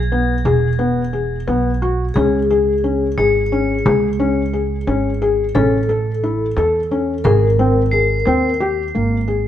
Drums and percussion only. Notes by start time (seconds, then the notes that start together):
0.46 frame drum
1.13 frame drum
1.48 frame drum
2.16 frame drum
3.18 frame drum
3.86 frame drum
4.87 frame drum
5.55 frame drum
6.57 frame drum
7.25 frame drum
7.92 frame drum
8.26 frame drum
8.60 frame drum